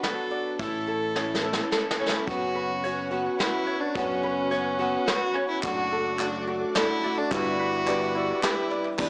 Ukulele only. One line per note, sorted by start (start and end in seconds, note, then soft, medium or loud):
0.00 0.59 F#4 medium
0.00 0.59 B4 medium
0.00 0.30 D5 medium
0.31 0.59 D5 medium
0.59 1.42 E4 medium
0.87 1.70 A4 medium
1.15 1.98 C#5 medium
1.43 2.26 E4 medium
1.71 2.27 A4 medium
2.00 2.28 C#5 medium
2.27 3.10 F#4 medium
2.55 3.38 B4 medium
2.84 3.66 C#5 medium
3.11 3.94 F#4 medium
3.39 4.22 B4 medium
3.67 4.50 C#5 medium
3.95 4.78 F#4 medium
4.23 5.06 B4 medium
4.51 5.34 C#5 medium
4.79 5.62 F#4 medium
5.07 5.63 B4 medium
5.35 5.63 C#5 medium
5.63 6.46 F#4 medium
5.92 6.74 A4 medium
6.19 7.03 D5 medium
6.48 7.31 F#4 medium
6.76 7.31 A4 medium
7.04 7.31 D5 medium
7.32 8.14 E4 medium
7.59 8.71 B4 medium
7.87 8.70 D5 medium
8.15 8.99 E4 medium
8.43 8.99 G4 medium
8.71 8.99 D5 medium